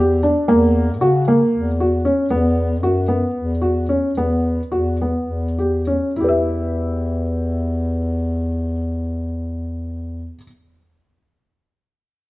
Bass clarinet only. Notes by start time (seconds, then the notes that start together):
Already playing: E2
0.49 E2
1.01 C#3
1.53 E2
2.30 E2
2.83 F#2
3.35 E2
4.15 E2
4.70 E2
5.26 E2
6.16 E2